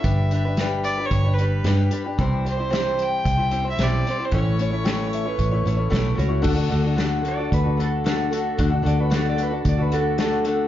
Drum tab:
CC |--------|--------|--------|x-------|
HH |xxxxxxxx|xxxxxxxx|xxxxxxxx|-xxxxxxx|
SD |--o---o-|--o---o-|--o---o-|--o---o-|
BD |o---o---|o---o---|o---o-o-|o---o---|

CC |--------|
HH |xxxxxxxx|
SD |--o---o-|
BD |o---o---|